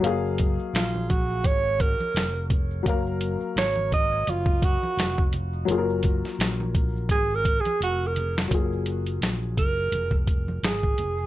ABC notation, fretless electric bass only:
X:1
M:4/4
L:1/16
Q:"Swing 16ths" 1/4=85
K:F#
V:1 name="Fretless electric bass" clef=bass
F,,,3 z A,,,4 G,,,3 z E,,,4 | F,,,3 z G,,,4 F,,,3 z E,,,4 | F,,,3 z A,,,4 G,,,3 z E,,,4 | F,,,4 A,,,2 F,,,2 E,,,4 G,,,2 E,,,2 |]